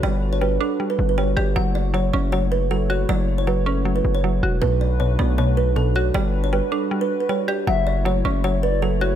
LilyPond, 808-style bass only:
\new Staff \with { instrumentName = "808-style bass" } { \clef bass \time 4/4 \key fis \phrygian \tempo 4 = 157 g,,4. r4 g,,4 g,,8 | fis,,4. fis,,2~ fis,,8 | fis,,2~ fis,,8 fis,,4 e,,8 | b,,4. b,,2~ b,,8 |
g,,4~ g,,16 r2 r8. | fis,,4. fis,,2~ fis,,8 | }